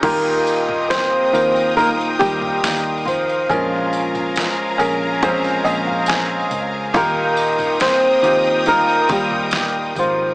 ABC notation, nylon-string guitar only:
X:1
M:4/4
L:1/8
Q:1/4=70
K:Ebmix
V:1 name="Nylon-string guitar"
[B,B]2 [Cc]2 [B,B] [G,G]2 [F,F]- | [F,F]3 z4 z | [B,B]2 [Cc]2 [B,B] [G,G]2 [F,F] |]